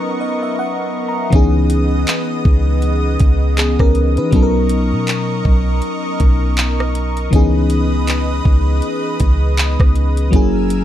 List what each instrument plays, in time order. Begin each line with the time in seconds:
Already playing: fm electric piano F#3 B3 C#4 D#4 A#4, analog synth pad B3 A#4 D#5 C#6
0.21 fm electric piano D#5
0.43 fm electric piano E5
0.59 fm electric piano F#5
1.08 fm electric piano A#5
1.30 808-style bass C#2, fm electric piano E3 B3 C#4 D#4, analog synth pad B3 D#5 D#6, kick, closed hi-hat
1.36 fm electric piano G#4
1.70 closed hi-hat
2.07 clap, closed hi-hat
2.45 808-style bass C#2, kick
2.82 closed hi-hat
3.20 808-style bass C#2, kick, closed hi-hat
3.57 fm electric piano B3 G#4, clap, closed hi-hat
3.79 808-style bass C#2, fm electric piano C#4 A#4, kick, cross-stick
3.95 closed hi-hat
4.17 808-style bass E3, fm electric piano D#4 B4, closed hi-hat
4.31 808-style bass B1, fm electric piano F#3 B3 C#4 D#4, analog synth pad A#4 D#5 C#6, kick, closed hi-hat
4.36 fm electric piano A4
4.42 fm electric piano A#4
4.69 closed hi-hat
4.92 808-style bass B2
5.07 clap, closed hi-hat
5.45 808-style bass B1, kick
5.82 closed hi-hat
6.20 808-style bass B1, kick, closed hi-hat
6.57 clap, closed hi-hat
6.80 cross-stick
6.95 closed hi-hat, open hi-hat
7.17 closed hi-hat
7.31 808-style bass C#2, fm electric piano E3 B3 C#4 D#4, analog synth pad B4 D#5 D#6, kick, closed hi-hat
7.36 fm electric piano G#4
7.70 closed hi-hat
8.08 clap, closed hi-hat
8.45 808-style bass C#2, kick
8.82 closed hi-hat
9.20 808-style bass C#2, kick, closed hi-hat
9.58 clap, closed hi-hat
9.80 808-style bass C#2, kick, cross-stick
9.96 closed hi-hat
10.17 closed hi-hat
10.31 808-style bass F#1, fm electric piano F#3 A#3 C#4 E4, analog synth pad A#4 G#5 E6, kick, closed hi-hat
10.36 fm electric piano G#4
10.70 closed hi-hat